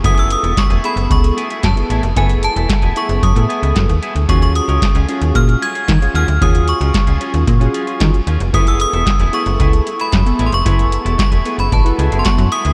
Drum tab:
HH |xxxxxxxxxxxxxxxx|xxxxxxxxxxxxxxxx|xxxxxxxxxxxxxxxx|xxxxxxxxxxxxxxxx|
CP |----x-------x---|----x-------x---|----x-------x---|----x-------x---|
SD |----o-------o---|----o-------o---|----o-------o---|----o-------o---|
BD |o---o---o---o---|o---o---o---o---|o---o---o---o---|o---o---o---o---|

HH |xxxxxxxxxxxxxxxx|xxxxxxxxxxxxxxxx|
CP |----x-------x---|----x-------x---|
SD |----o-------o---|----o-------o---|
BD |o---o---o---o---|o---o---o---o---|